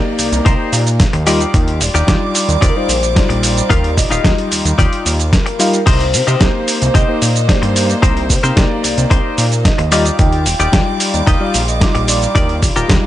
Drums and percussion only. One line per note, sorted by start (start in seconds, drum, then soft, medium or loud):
0.19 open hi-hat loud
0.19 shaker medium
0.32 closed hi-hat medium
0.32 shaker soft
0.46 kick loud
0.46 closed hi-hat medium
0.46 shaker soft
0.73 open hi-hat loud
0.73 shaker medium
0.87 closed hi-hat soft
0.87 shaker soft
1.00 kick loud
1.00 snare loud
1.00 closed hi-hat medium
1.00 shaker soft
1.13 closed hi-hat medium
1.27 open hi-hat loud
1.27 shaker medium
1.40 closed hi-hat soft
1.40 shaker soft
1.54 kick loud
1.54 closed hi-hat medium
1.54 shaker soft
1.68 closed hi-hat soft
1.81 open hi-hat loud
1.81 shaker medium
1.95 closed hi-hat soft
1.95 shaker soft
2.08 kick loud
2.08 snare loud
2.08 closed hi-hat medium
2.08 shaker soft
2.35 open hi-hat loud
2.35 shaker medium
2.49 closed hi-hat medium
2.49 shaker soft
2.62 kick loud
2.62 closed hi-hat medium
2.62 shaker soft
2.89 open hi-hat loud
2.89 shaker medium
3.03 closed hi-hat soft
3.03 shaker soft
3.16 kick loud
3.16 snare loud
3.16 closed hi-hat medium
3.16 shaker soft
3.30 closed hi-hat medium
3.43 open hi-hat loud
3.43 shaker medium
3.57 closed hi-hat soft
3.57 shaker soft
3.70 kick loud
3.70 closed hi-hat medium
3.70 shaker soft
3.84 closed hi-hat soft
3.97 kick medium
3.97 open hi-hat loud
3.97 shaker medium
4.11 closed hi-hat soft
4.11 shaker soft
4.25 kick loud
4.25 snare loud
4.25 closed hi-hat medium
4.25 shaker soft
4.38 closed hi-hat soft
4.52 open hi-hat loud
4.52 shaker medium
4.66 closed hi-hat medium
4.66 shaker soft
4.79 kick loud
4.79 closed hi-hat medium
4.79 shaker soft
4.93 closed hi-hat soft
5.06 open hi-hat loud
5.06 shaker medium
5.20 closed hi-hat soft
5.20 shaker soft
5.33 kick loud
5.33 snare loud
5.33 closed hi-hat medium
5.33 shaker soft
5.46 closed hi-hat medium
5.60 open hi-hat loud
5.60 shaker medium
5.73 closed hi-hat soft
5.73 shaker soft
5.87 kick loud
5.87 closed hi-hat medium
5.87 crash medium
5.87 shaker soft
6.00 closed hi-hat soft
6.14 open hi-hat loud
6.14 shaker medium
6.27 closed hi-hat soft
6.27 shaker soft
6.41 kick loud
6.41 snare loud
6.41 closed hi-hat medium
6.41 shaker soft
6.68 open hi-hat loud
6.68 shaker medium
6.82 closed hi-hat medium
6.82 shaker soft
6.95 kick loud
6.95 closed hi-hat medium
6.95 shaker soft
7.22 open hi-hat loud
7.22 shaker medium
7.36 closed hi-hat soft
7.36 shaker soft
7.49 kick loud
7.49 snare loud
7.49 closed hi-hat medium
7.49 shaker soft
7.63 closed hi-hat medium
7.76 open hi-hat loud
7.76 shaker medium
7.90 closed hi-hat soft
7.90 shaker soft
8.03 kick loud
8.03 closed hi-hat medium
8.03 shaker soft
8.17 closed hi-hat soft
8.30 kick medium
8.30 open hi-hat loud
8.30 shaker medium
8.44 closed hi-hat soft
8.44 shaker soft
8.57 kick loud
8.57 snare loud
8.57 closed hi-hat medium
8.57 shaker soft
8.84 open hi-hat loud
8.84 shaker medium
8.98 closed hi-hat medium
8.98 shaker soft
9.11 kick loud
9.11 closed hi-hat medium
9.11 shaker soft
9.38 open hi-hat loud
9.38 shaker medium
9.52 closed hi-hat soft
9.52 shaker soft
9.65 kick loud
9.65 snare loud
9.65 closed hi-hat medium
9.65 shaker soft
9.79 closed hi-hat medium
9.92 open hi-hat loud
9.92 shaker medium
10.05 closed hi-hat soft
10.05 shaker soft
10.19 kick loud
10.19 closed hi-hat medium
10.19 shaker soft
10.33 closed hi-hat soft
10.46 open hi-hat loud
10.46 shaker medium
10.60 closed hi-hat soft
10.60 shaker soft
10.73 kick loud
10.73 snare loud
10.73 closed hi-hat medium
10.73 shaker soft
11.00 open hi-hat loud
11.00 shaker medium
11.14 closed hi-hat medium
11.14 shaker soft
11.27 kick loud
11.27 closed hi-hat medium
11.27 shaker soft
11.54 open hi-hat loud
11.54 shaker medium
11.68 closed hi-hat soft
11.68 shaker soft
11.81 kick loud
11.81 snare loud
11.81 closed hi-hat medium
11.81 shaker soft
11.95 closed hi-hat medium
12.08 open hi-hat loud
12.08 shaker medium
12.22 closed hi-hat soft
12.22 shaker soft
12.35 kick loud
12.35 closed hi-hat medium
12.35 shaker soft
12.49 closed hi-hat soft
12.63 kick medium
12.63 open hi-hat loud
12.63 shaker medium
12.76 closed hi-hat soft
12.76 shaker soft
12.89 kick loud
12.89 snare loud
12.89 closed hi-hat medium
12.89 shaker soft